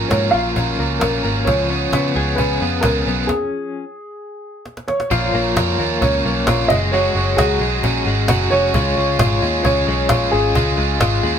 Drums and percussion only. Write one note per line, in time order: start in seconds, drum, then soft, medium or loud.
0.11 cajon bass medium
0.11 cajon slap medium
0.56 cajon bass medium
1.01 cajon bass medium
1.01 cajon slap loud
1.47 cajon bass medium
1.93 cajon bass loud
1.93 cajon slap medium
2.38 cajon bass medium
2.83 cajon bass loud
2.83 cajon slap loud
3.29 cajon bass medium
3.29 cajon slap medium
4.65 cajon slap medium
4.77 cajon slap medium
4.88 cajon slap medium
5.00 cajon slap medium
5.11 cajon bass loud
5.57 cajon bass loud
5.57 cajon slap loud
6.02 cajon bass loud
6.47 cajon bass loud
6.47 cajon slap loud
6.70 cajon bass medium
6.93 cajon slap soft
7.38 cajon bass loud
7.38 cajon slap loud
7.84 cajon bass medium
8.28 cajon bass loud
8.28 cajon slap loud
8.74 cajon bass loud
9.19 cajon bass loud
9.19 cajon slap loud
9.65 cajon bass medium
10.09 cajon bass loud
10.09 cajon slap loud
10.55 cajon bass loud
11.01 cajon bass loud
11.01 cajon slap loud